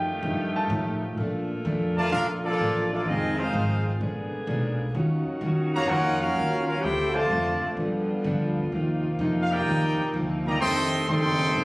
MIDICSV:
0, 0, Header, 1, 8, 480
1, 0, Start_track
1, 0, Key_signature, -2, "major"
1, 0, Tempo, 472069
1, 1192, Time_signature, 4, 2, 24, 8
1, 11836, End_track
2, 0, Start_track
2, 0, Title_t, "Grand piano"
2, 0, Program_c, 0, 0
2, 0, Note_on_c, 0, 79, 76
2, 527, Note_off_c, 0, 79, 0
2, 571, Note_on_c, 0, 81, 82
2, 1009, Note_off_c, 0, 81, 0
2, 11836, End_track
3, 0, Start_track
3, 0, Title_t, "Trumpet section"
3, 0, Program_c, 1, 61
3, 2010, Note_on_c, 1, 81, 107
3, 2012, Note_on_c, 1, 70, 96
3, 2013, Note_on_c, 1, 74, 96
3, 2014, Note_on_c, 1, 65, 95
3, 2149, Note_off_c, 1, 81, 0
3, 2151, Note_off_c, 1, 70, 0
3, 2151, Note_off_c, 1, 74, 0
3, 2152, Note_off_c, 1, 65, 0
3, 2161, Note_on_c, 1, 77, 107
3, 2163, Note_on_c, 1, 62, 94
3, 2163, Note_on_c, 1, 69, 91
3, 2169, Note_on_c, 1, 70, 88
3, 2304, Note_off_c, 1, 77, 0
3, 2305, Note_off_c, 1, 62, 0
3, 2306, Note_off_c, 1, 69, 0
3, 2310, Note_off_c, 1, 70, 0
3, 2482, Note_on_c, 1, 69, 89
3, 2486, Note_on_c, 1, 58, 91
3, 2491, Note_on_c, 1, 65, 86
3, 2494, Note_on_c, 1, 74, 105
3, 2925, Note_off_c, 1, 69, 0
3, 2927, Note_off_c, 1, 58, 0
3, 2929, Note_off_c, 1, 65, 0
3, 2931, Note_off_c, 1, 74, 0
3, 2977, Note_on_c, 1, 69, 79
3, 2980, Note_on_c, 1, 65, 83
3, 2981, Note_on_c, 1, 74, 90
3, 2982, Note_on_c, 1, 58, 82
3, 3113, Note_off_c, 1, 69, 0
3, 3115, Note_off_c, 1, 65, 0
3, 3115, Note_off_c, 1, 74, 0
3, 3116, Note_off_c, 1, 58, 0
3, 3138, Note_on_c, 1, 65, 94
3, 3139, Note_on_c, 1, 68, 93
3, 3141, Note_on_c, 1, 75, 102
3, 3144, Note_on_c, 1, 60, 89
3, 3436, Note_off_c, 1, 68, 0
3, 3447, Note_off_c, 1, 65, 0
3, 3448, Note_on_c, 1, 63, 77
3, 3448, Note_on_c, 1, 68, 83
3, 3448, Note_on_c, 1, 72, 85
3, 3449, Note_off_c, 1, 75, 0
3, 3450, Note_off_c, 1, 60, 0
3, 3451, Note_on_c, 1, 77, 94
3, 4079, Note_off_c, 1, 63, 0
3, 4079, Note_off_c, 1, 68, 0
3, 4079, Note_off_c, 1, 72, 0
3, 4080, Note_off_c, 1, 77, 0
3, 5841, Note_on_c, 1, 66, 96
3, 5842, Note_on_c, 1, 82, 114
3, 5845, Note_on_c, 1, 77, 97
3, 5848, Note_on_c, 1, 73, 98
3, 5984, Note_off_c, 1, 66, 0
3, 5985, Note_off_c, 1, 82, 0
3, 5986, Note_on_c, 1, 78, 114
3, 5987, Note_off_c, 1, 77, 0
3, 5988, Note_off_c, 1, 73, 0
3, 5990, Note_on_c, 1, 65, 96
3, 5994, Note_on_c, 1, 61, 97
3, 5999, Note_on_c, 1, 70, 100
3, 6295, Note_off_c, 1, 70, 0
3, 6296, Note_off_c, 1, 61, 0
3, 6306, Note_on_c, 1, 66, 91
3, 6307, Note_on_c, 1, 70, 85
3, 6308, Note_on_c, 1, 61, 85
3, 6311, Note_off_c, 1, 78, 0
3, 6311, Note_on_c, 1, 77, 101
3, 6313, Note_off_c, 1, 65, 0
3, 6770, Note_off_c, 1, 77, 0
3, 6773, Note_off_c, 1, 61, 0
3, 6776, Note_off_c, 1, 66, 0
3, 6778, Note_off_c, 1, 70, 0
3, 6782, Note_on_c, 1, 77, 95
3, 6786, Note_on_c, 1, 61, 86
3, 6788, Note_on_c, 1, 66, 86
3, 6790, Note_on_c, 1, 70, 85
3, 6934, Note_off_c, 1, 77, 0
3, 6936, Note_off_c, 1, 61, 0
3, 6937, Note_off_c, 1, 66, 0
3, 6938, Note_off_c, 1, 70, 0
3, 6939, Note_on_c, 1, 72, 89
3, 6942, Note_on_c, 1, 64, 101
3, 6943, Note_on_c, 1, 79, 101
3, 6945, Note_on_c, 1, 69, 92
3, 7245, Note_off_c, 1, 72, 0
3, 7257, Note_on_c, 1, 65, 83
3, 7257, Note_on_c, 1, 72, 86
3, 7264, Note_on_c, 1, 74, 82
3, 7268, Note_off_c, 1, 64, 0
3, 7269, Note_off_c, 1, 79, 0
3, 7269, Note_on_c, 1, 81, 101
3, 7270, Note_off_c, 1, 69, 0
3, 7902, Note_off_c, 1, 65, 0
3, 7902, Note_off_c, 1, 72, 0
3, 7906, Note_off_c, 1, 74, 0
3, 7908, Note_off_c, 1, 81, 0
3, 9580, Note_on_c, 1, 77, 86
3, 9673, Note_off_c, 1, 77, 0
3, 9682, Note_on_c, 1, 74, 99
3, 9687, Note_on_c, 1, 70, 112
3, 9691, Note_on_c, 1, 79, 123
3, 9695, Note_on_c, 1, 63, 103
3, 10314, Note_off_c, 1, 74, 0
3, 10316, Note_off_c, 1, 70, 0
3, 10318, Note_off_c, 1, 79, 0
3, 10320, Note_off_c, 1, 63, 0
3, 10636, Note_on_c, 1, 82, 99
3, 10638, Note_on_c, 1, 67, 81
3, 10642, Note_on_c, 1, 74, 84
3, 10646, Note_on_c, 1, 75, 84
3, 10778, Note_off_c, 1, 75, 0
3, 10780, Note_off_c, 1, 82, 0
3, 10781, Note_off_c, 1, 67, 0
3, 10783, Note_off_c, 1, 74, 0
3, 10785, Note_on_c, 1, 84, 123
3, 10790, Note_on_c, 1, 75, 106
3, 10790, Note_on_c, 1, 79, 111
3, 10792, Note_on_c, 1, 69, 106
3, 11232, Note_off_c, 1, 84, 0
3, 11235, Note_off_c, 1, 75, 0
3, 11235, Note_off_c, 1, 79, 0
3, 11236, Note_off_c, 1, 69, 0
3, 11277, Note_on_c, 1, 75, 97
3, 11278, Note_on_c, 1, 79, 101
3, 11279, Note_on_c, 1, 84, 116
3, 11280, Note_on_c, 1, 69, 103
3, 11836, Note_off_c, 1, 69, 0
3, 11836, Note_off_c, 1, 75, 0
3, 11836, Note_off_c, 1, 79, 0
3, 11836, Note_off_c, 1, 84, 0
3, 11836, End_track
4, 0, Start_track
4, 0, Title_t, "Saxophone section"
4, 0, Program_c, 2, 65
4, 0, Note_on_c, 2, 51, 89
4, 0, Note_on_c, 2, 57, 84
4, 0, Note_on_c, 2, 65, 103
4, 0, Note_on_c, 2, 67, 87
4, 1167, Note_off_c, 2, 65, 0
4, 1170, Note_off_c, 2, 67, 0
4, 1171, Note_off_c, 2, 57, 0
4, 1173, Note_off_c, 2, 51, 0
4, 1179, Note_on_c, 2, 65, 91
4, 1185, Note_on_c, 2, 58, 86
4, 1189, Note_on_c, 2, 50, 89
4, 1189, Note_on_c, 2, 69, 85
4, 3089, Note_off_c, 2, 58, 0
4, 3091, Note_off_c, 2, 50, 0
4, 3091, Note_off_c, 2, 69, 0
4, 3111, Note_on_c, 2, 56, 79
4, 3114, Note_on_c, 2, 60, 75
4, 3119, Note_on_c, 2, 51, 86
4, 4037, Note_off_c, 2, 65, 0
4, 4062, Note_off_c, 2, 56, 0
4, 4063, Note_off_c, 2, 60, 0
4, 4066, Note_off_c, 2, 51, 0
4, 4077, Note_on_c, 2, 50, 77
4, 4080, Note_on_c, 2, 59, 76
4, 4081, Note_on_c, 2, 58, 77
4, 4081, Note_on_c, 2, 68, 99
4, 5024, Note_off_c, 2, 50, 0
4, 5026, Note_off_c, 2, 58, 0
4, 5026, Note_off_c, 2, 59, 0
4, 5026, Note_off_c, 2, 68, 0
4, 5033, Note_on_c, 2, 61, 80
4, 5033, Note_on_c, 2, 63, 104
4, 5035, Note_on_c, 2, 66, 86
4, 5036, Note_on_c, 2, 51, 90
4, 6752, Note_off_c, 2, 51, 0
4, 6752, Note_off_c, 2, 61, 0
4, 6752, Note_off_c, 2, 63, 0
4, 6752, Note_off_c, 2, 66, 0
4, 6924, Note_on_c, 2, 60, 72
4, 6928, Note_on_c, 2, 65, 100
4, 6929, Note_on_c, 2, 57, 77
4, 6933, Note_on_c, 2, 50, 89
4, 7884, Note_on_c, 2, 55, 74
4, 7887, Note_off_c, 2, 60, 0
4, 7888, Note_on_c, 2, 59, 78
4, 7890, Note_off_c, 2, 57, 0
4, 8841, Note_off_c, 2, 50, 0
4, 8846, Note_off_c, 2, 55, 0
4, 8849, Note_off_c, 2, 59, 0
4, 8849, Note_on_c, 2, 58, 82
4, 8853, Note_on_c, 2, 63, 93
4, 8856, Note_on_c, 2, 60, 82
4, 10738, Note_off_c, 2, 65, 0
4, 10758, Note_off_c, 2, 58, 0
4, 10797, Note_on_c, 2, 67, 99
4, 10799, Note_on_c, 2, 55, 82
4, 11836, Note_off_c, 2, 55, 0
4, 11836, Note_off_c, 2, 60, 0
4, 11836, Note_off_c, 2, 63, 0
4, 11836, Note_off_c, 2, 67, 0
4, 11836, End_track
5, 0, Start_track
5, 0, Title_t, "Trombone section"
5, 0, Program_c, 3, 61
5, 1995, Note_on_c, 3, 53, 90
5, 2000, Note_on_c, 3, 57, 92
5, 2001, Note_on_c, 3, 50, 89
5, 2134, Note_off_c, 3, 57, 0
5, 2141, Note_off_c, 3, 53, 0
5, 2145, Note_off_c, 3, 50, 0
5, 2146, Note_on_c, 3, 57, 93
5, 2148, Note_on_c, 3, 65, 97
5, 2149, Note_on_c, 3, 62, 91
5, 2292, Note_off_c, 3, 57, 0
5, 2294, Note_off_c, 3, 65, 0
5, 2295, Note_off_c, 3, 62, 0
5, 2466, Note_on_c, 3, 62, 80
5, 2469, Note_on_c, 3, 53, 93
5, 2476, Note_on_c, 3, 69, 88
5, 2916, Note_off_c, 3, 62, 0
5, 2918, Note_off_c, 3, 53, 0
5, 2921, Note_off_c, 3, 69, 0
5, 2954, Note_on_c, 3, 53, 82
5, 2954, Note_on_c, 3, 57, 87
5, 2955, Note_on_c, 3, 62, 83
5, 3101, Note_off_c, 3, 53, 0
5, 3101, Note_off_c, 3, 57, 0
5, 3101, Note_off_c, 3, 62, 0
5, 3114, Note_on_c, 3, 63, 79
5, 3115, Note_on_c, 3, 60, 78
5, 3122, Note_on_c, 3, 56, 87
5, 3423, Note_off_c, 3, 60, 0
5, 3424, Note_off_c, 3, 56, 0
5, 3433, Note_on_c, 3, 65, 83
5, 3435, Note_off_c, 3, 63, 0
5, 3436, Note_on_c, 3, 56, 80
5, 3436, Note_on_c, 3, 60, 87
5, 4071, Note_off_c, 3, 65, 0
5, 4073, Note_off_c, 3, 56, 0
5, 4073, Note_off_c, 3, 60, 0
5, 5838, Note_on_c, 3, 49, 96
5, 5839, Note_on_c, 3, 54, 100
5, 5840, Note_on_c, 3, 58, 97
5, 5953, Note_off_c, 3, 58, 0
5, 5964, Note_on_c, 3, 66, 96
5, 5965, Note_on_c, 3, 61, 93
5, 5966, Note_on_c, 3, 58, 98
5, 5983, Note_off_c, 3, 49, 0
5, 5983, Note_off_c, 3, 54, 0
5, 6276, Note_off_c, 3, 66, 0
5, 6279, Note_off_c, 3, 58, 0
5, 6283, Note_off_c, 3, 61, 0
5, 6288, Note_on_c, 3, 66, 93
5, 6291, Note_on_c, 3, 58, 96
5, 6295, Note_on_c, 3, 61, 88
5, 6736, Note_off_c, 3, 58, 0
5, 6744, Note_off_c, 3, 61, 0
5, 6749, Note_on_c, 3, 58, 87
5, 6752, Note_on_c, 3, 65, 84
5, 6756, Note_on_c, 3, 61, 83
5, 6780, Note_off_c, 3, 66, 0
5, 6903, Note_on_c, 3, 67, 84
5, 6916, Note_off_c, 3, 58, 0
5, 6918, Note_off_c, 3, 65, 0
5, 6920, Note_off_c, 3, 61, 0
5, 7235, Note_on_c, 3, 53, 85
5, 7237, Note_on_c, 3, 48, 88
5, 7237, Note_on_c, 3, 57, 89
5, 7249, Note_off_c, 3, 67, 0
5, 7891, Note_off_c, 3, 53, 0
5, 7892, Note_off_c, 3, 48, 0
5, 7892, Note_off_c, 3, 57, 0
5, 9667, Note_on_c, 3, 67, 98
5, 9668, Note_on_c, 3, 58, 104
5, 9673, Note_on_c, 3, 63, 100
5, 10306, Note_off_c, 3, 67, 0
5, 10307, Note_off_c, 3, 58, 0
5, 10309, Note_off_c, 3, 63, 0
5, 10630, Note_on_c, 3, 51, 96
5, 10631, Note_on_c, 3, 58, 95
5, 10633, Note_on_c, 3, 55, 96
5, 10768, Note_off_c, 3, 51, 0
5, 10777, Note_off_c, 3, 58, 0
5, 10779, Note_off_c, 3, 55, 0
5, 10779, Note_on_c, 3, 57, 101
5, 10781, Note_on_c, 3, 51, 93
5, 10781, Note_on_c, 3, 60, 99
5, 11229, Note_off_c, 3, 57, 0
5, 11230, Note_off_c, 3, 51, 0
5, 11230, Note_off_c, 3, 60, 0
5, 11260, Note_on_c, 3, 60, 95
5, 11261, Note_on_c, 3, 51, 91
5, 11262, Note_on_c, 3, 57, 91
5, 11836, Note_off_c, 3, 51, 0
5, 11836, Note_off_c, 3, 57, 0
5, 11836, Note_off_c, 3, 60, 0
5, 11836, End_track
6, 0, Start_track
6, 0, Title_t, "Steel-string acoustic guitar"
6, 0, Program_c, 4, 25
6, 0, Note_on_c, 4, 67, 79
6, 102, Note_off_c, 4, 67, 0
6, 244, Note_on_c, 4, 53, 60
6, 246, Note_on_c, 4, 57, 62
6, 253, Note_on_c, 4, 63, 59
6, 266, Note_on_c, 4, 67, 57
6, 576, Note_off_c, 4, 53, 0
6, 577, Note_off_c, 4, 57, 0
6, 580, Note_off_c, 4, 63, 0
6, 587, Note_off_c, 4, 67, 0
6, 726, Note_on_c, 4, 53, 78
6, 727, Note_on_c, 4, 57, 76
6, 734, Note_on_c, 4, 63, 68
6, 739, Note_on_c, 4, 67, 76
6, 1056, Note_off_c, 4, 53, 0
6, 1057, Note_off_c, 4, 57, 0
6, 1061, Note_off_c, 4, 63, 0
6, 1063, Note_off_c, 4, 67, 0
6, 1210, Note_on_c, 4, 46, 54
6, 1214, Note_on_c, 4, 53, 59
6, 1223, Note_on_c, 4, 57, 66
6, 1228, Note_on_c, 4, 62, 71
6, 1539, Note_off_c, 4, 46, 0
6, 1541, Note_off_c, 4, 53, 0
6, 1545, Note_off_c, 4, 57, 0
6, 1548, Note_off_c, 4, 62, 0
6, 1682, Note_on_c, 4, 46, 76
6, 1687, Note_on_c, 4, 53, 79
6, 1693, Note_on_c, 4, 62, 78
6, 1694, Note_on_c, 4, 57, 73
6, 2015, Note_off_c, 4, 46, 0
6, 2017, Note_off_c, 4, 53, 0
6, 2020, Note_off_c, 4, 62, 0
6, 2021, Note_off_c, 4, 57, 0
6, 2153, Note_on_c, 4, 46, 56
6, 2158, Note_on_c, 4, 53, 55
6, 2165, Note_on_c, 4, 57, 54
6, 2174, Note_on_c, 4, 62, 59
6, 2490, Note_off_c, 4, 46, 0
6, 2493, Note_off_c, 4, 53, 0
6, 2496, Note_off_c, 4, 57, 0
6, 2501, Note_off_c, 4, 62, 0
6, 2630, Note_on_c, 4, 46, 70
6, 2641, Note_on_c, 4, 53, 71
6, 2645, Note_on_c, 4, 57, 70
6, 2646, Note_on_c, 4, 62, 72
6, 2969, Note_off_c, 4, 46, 0
6, 2974, Note_off_c, 4, 53, 0
6, 2976, Note_off_c, 4, 57, 0
6, 2977, Note_off_c, 4, 62, 0
6, 3115, Note_on_c, 4, 41, 49
6, 3121, Note_on_c, 4, 51, 50
6, 3128, Note_on_c, 4, 56, 52
6, 3139, Note_on_c, 4, 60, 58
6, 3451, Note_off_c, 4, 41, 0
6, 3454, Note_off_c, 4, 51, 0
6, 3458, Note_off_c, 4, 56, 0
6, 3463, Note_off_c, 4, 60, 0
6, 3602, Note_on_c, 4, 41, 71
6, 3604, Note_on_c, 4, 51, 65
6, 3610, Note_on_c, 4, 56, 72
6, 3611, Note_on_c, 4, 60, 77
6, 3935, Note_off_c, 4, 41, 0
6, 3936, Note_off_c, 4, 51, 0
6, 3938, Note_off_c, 4, 56, 0
6, 3939, Note_off_c, 4, 60, 0
6, 4067, Note_on_c, 4, 46, 57
6, 4076, Note_on_c, 4, 56, 58
6, 4079, Note_on_c, 4, 59, 62
6, 4087, Note_on_c, 4, 62, 65
6, 4407, Note_off_c, 4, 46, 0
6, 4412, Note_off_c, 4, 56, 0
6, 4413, Note_off_c, 4, 59, 0
6, 4417, Note_off_c, 4, 62, 0
6, 4540, Note_on_c, 4, 46, 73
6, 4551, Note_on_c, 4, 59, 84
6, 4553, Note_on_c, 4, 56, 78
6, 4560, Note_on_c, 4, 62, 79
6, 4884, Note_off_c, 4, 46, 0
6, 4889, Note_off_c, 4, 59, 0
6, 4890, Note_off_c, 4, 56, 0
6, 4894, Note_off_c, 4, 62, 0
6, 5032, Note_on_c, 4, 51, 61
6, 5037, Note_on_c, 4, 54, 63
6, 5044, Note_on_c, 4, 61, 68
6, 5052, Note_on_c, 4, 65, 62
6, 5370, Note_off_c, 4, 51, 0
6, 5372, Note_off_c, 4, 54, 0
6, 5375, Note_off_c, 4, 61, 0
6, 5379, Note_off_c, 4, 65, 0
6, 5506, Note_on_c, 4, 51, 79
6, 5513, Note_on_c, 4, 61, 84
6, 5517, Note_on_c, 4, 54, 83
6, 5524, Note_on_c, 4, 65, 79
6, 5846, Note_off_c, 4, 51, 0
6, 5850, Note_off_c, 4, 61, 0
6, 5852, Note_off_c, 4, 54, 0
6, 5855, Note_off_c, 4, 65, 0
6, 5992, Note_on_c, 4, 51, 57
6, 5994, Note_on_c, 4, 54, 54
6, 6004, Note_on_c, 4, 61, 56
6, 6008, Note_on_c, 4, 65, 55
6, 6329, Note_off_c, 4, 51, 0
6, 6330, Note_off_c, 4, 54, 0
6, 6335, Note_off_c, 4, 61, 0
6, 6337, Note_off_c, 4, 65, 0
6, 6480, Note_on_c, 4, 51, 66
6, 6487, Note_on_c, 4, 54, 75
6, 6487, Note_on_c, 4, 61, 68
6, 6498, Note_on_c, 4, 65, 70
6, 6813, Note_off_c, 4, 51, 0
6, 6817, Note_off_c, 4, 54, 0
6, 6817, Note_off_c, 4, 61, 0
6, 6822, Note_off_c, 4, 65, 0
6, 6956, Note_on_c, 4, 50, 53
6, 6967, Note_on_c, 4, 57, 51
6, 6968, Note_on_c, 4, 60, 56
6, 6976, Note_on_c, 4, 65, 54
6, 7291, Note_off_c, 4, 50, 0
6, 7296, Note_off_c, 4, 57, 0
6, 7297, Note_off_c, 4, 60, 0
6, 7301, Note_off_c, 4, 65, 0
6, 7429, Note_on_c, 4, 50, 62
6, 7438, Note_on_c, 4, 57, 76
6, 7444, Note_on_c, 4, 60, 71
6, 7447, Note_on_c, 4, 65, 74
6, 7767, Note_off_c, 4, 50, 0
6, 7772, Note_off_c, 4, 57, 0
6, 7775, Note_off_c, 4, 60, 0
6, 7776, Note_off_c, 4, 65, 0
6, 7909, Note_on_c, 4, 43, 58
6, 7921, Note_on_c, 4, 53, 60
6, 7928, Note_on_c, 4, 62, 63
6, 7931, Note_on_c, 4, 59, 60
6, 8247, Note_off_c, 4, 43, 0
6, 8253, Note_off_c, 4, 53, 0
6, 8257, Note_off_c, 4, 62, 0
6, 8258, Note_off_c, 4, 59, 0
6, 8391, Note_on_c, 4, 43, 71
6, 8394, Note_on_c, 4, 53, 85
6, 8405, Note_on_c, 4, 59, 79
6, 8413, Note_on_c, 4, 62, 86
6, 8728, Note_off_c, 4, 43, 0
6, 8729, Note_off_c, 4, 53, 0
6, 8735, Note_off_c, 4, 59, 0
6, 8739, Note_off_c, 4, 62, 0
6, 8869, Note_on_c, 4, 48, 55
6, 8881, Note_on_c, 4, 53, 59
6, 8881, Note_on_c, 4, 58, 58
6, 8889, Note_on_c, 4, 63, 61
6, 9207, Note_off_c, 4, 48, 0
6, 9213, Note_off_c, 4, 53, 0
6, 9213, Note_off_c, 4, 58, 0
6, 9217, Note_off_c, 4, 63, 0
6, 9355, Note_on_c, 4, 48, 77
6, 9358, Note_on_c, 4, 53, 70
6, 9364, Note_on_c, 4, 58, 78
6, 9364, Note_on_c, 4, 63, 89
6, 9690, Note_off_c, 4, 48, 0
6, 9691, Note_off_c, 4, 53, 0
6, 9694, Note_off_c, 4, 58, 0
6, 9694, Note_off_c, 4, 63, 0
6, 9838, Note_on_c, 4, 48, 54
6, 9842, Note_on_c, 4, 53, 53
6, 9848, Note_on_c, 4, 58, 60
6, 9853, Note_on_c, 4, 63, 53
6, 10171, Note_off_c, 4, 48, 0
6, 10173, Note_off_c, 4, 53, 0
6, 10176, Note_off_c, 4, 58, 0
6, 10178, Note_off_c, 4, 63, 0
6, 10308, Note_on_c, 4, 48, 77
6, 10314, Note_on_c, 4, 53, 78
6, 10322, Note_on_c, 4, 58, 83
6, 10324, Note_on_c, 4, 63, 76
6, 10645, Note_off_c, 4, 48, 0
6, 10649, Note_off_c, 4, 53, 0
6, 10653, Note_off_c, 4, 58, 0
6, 10654, Note_off_c, 4, 63, 0
6, 10786, Note_on_c, 4, 41, 48
6, 10799, Note_on_c, 4, 51, 49
6, 10803, Note_on_c, 4, 57, 50
6, 10811, Note_on_c, 4, 62, 60
6, 11125, Note_off_c, 4, 41, 0
6, 11131, Note_off_c, 4, 51, 0
6, 11133, Note_off_c, 4, 57, 0
6, 11137, Note_off_c, 4, 62, 0
6, 11266, Note_on_c, 4, 41, 70
6, 11269, Note_on_c, 4, 51, 74
6, 11277, Note_on_c, 4, 57, 69
6, 11283, Note_on_c, 4, 62, 72
6, 11604, Note_off_c, 4, 41, 0
6, 11606, Note_off_c, 4, 51, 0
6, 11610, Note_off_c, 4, 57, 0
6, 11613, Note_off_c, 4, 62, 0
6, 11741, Note_on_c, 4, 41, 53
6, 11747, Note_on_c, 4, 51, 57
6, 11755, Note_on_c, 4, 57, 58
6, 11767, Note_on_c, 4, 62, 66
6, 11836, Note_off_c, 4, 41, 0
6, 11836, Note_off_c, 4, 51, 0
6, 11836, Note_off_c, 4, 57, 0
6, 11836, Note_off_c, 4, 62, 0
6, 11836, End_track
7, 0, Start_track
7, 0, Title_t, "Upright bass"
7, 0, Program_c, 5, 32
7, 0, Note_on_c, 5, 42, 98
7, 218, Note_off_c, 5, 42, 0
7, 229, Note_on_c, 5, 43, 100
7, 696, Note_off_c, 5, 43, 0
7, 710, Note_on_c, 5, 45, 112
7, 1176, Note_off_c, 5, 45, 0
7, 1194, Note_on_c, 5, 46, 90
7, 1658, Note_off_c, 5, 46, 0
7, 1676, Note_on_c, 5, 41, 94
7, 2139, Note_off_c, 5, 41, 0
7, 2148, Note_on_c, 5, 34, 94
7, 2616, Note_off_c, 5, 34, 0
7, 2635, Note_on_c, 5, 33, 97
7, 3099, Note_off_c, 5, 33, 0
7, 3111, Note_on_c, 5, 29, 89
7, 3577, Note_off_c, 5, 29, 0
7, 3592, Note_on_c, 5, 32, 103
7, 4057, Note_off_c, 5, 32, 0
7, 4072, Note_on_c, 5, 34, 97
7, 4372, Note_off_c, 5, 34, 0
7, 4547, Note_on_c, 5, 35, 102
7, 5015, Note_off_c, 5, 35, 0
7, 5029, Note_on_c, 5, 39, 92
7, 5329, Note_off_c, 5, 39, 0
7, 5500, Note_on_c, 5, 42, 101
7, 5971, Note_off_c, 5, 42, 0
7, 5987, Note_on_c, 5, 41, 97
7, 6455, Note_off_c, 5, 41, 0
7, 6467, Note_on_c, 5, 39, 101
7, 6934, Note_off_c, 5, 39, 0
7, 6949, Note_on_c, 5, 38, 90
7, 7412, Note_off_c, 5, 38, 0
7, 7418, Note_on_c, 5, 41, 92
7, 7723, Note_off_c, 5, 41, 0
7, 7898, Note_on_c, 5, 43, 97
7, 8369, Note_off_c, 5, 43, 0
7, 8382, Note_on_c, 5, 38, 101
7, 8851, Note_off_c, 5, 38, 0
7, 8867, Note_on_c, 5, 39, 89
7, 9333, Note_off_c, 5, 39, 0
7, 9343, Note_on_c, 5, 41, 102
7, 9811, Note_off_c, 5, 41, 0
7, 9828, Note_on_c, 5, 39, 99
7, 10128, Note_off_c, 5, 39, 0
7, 10304, Note_on_c, 5, 38, 98
7, 10771, Note_off_c, 5, 38, 0
7, 10785, Note_on_c, 5, 29, 86
7, 11252, Note_off_c, 5, 29, 0
7, 11265, Note_on_c, 5, 30, 96
7, 11731, Note_off_c, 5, 30, 0
7, 11740, Note_on_c, 5, 31, 93
7, 11836, Note_off_c, 5, 31, 0
7, 11836, End_track
8, 0, Start_track
8, 0, Title_t, "Muted upright bass strokes"
8, 4397, Note_on_c, 9, 29, 44
8, 4498, Note_off_c, 9, 29, 0
8, 5354, Note_on_c, 9, 29, 42
8, 5456, Note_off_c, 9, 29, 0
8, 7743, Note_on_c, 9, 29, 44
8, 7845, Note_off_c, 9, 29, 0
8, 10153, Note_on_c, 9, 29, 39
8, 10255, Note_off_c, 9, 29, 0
8, 11836, End_track
0, 0, End_of_file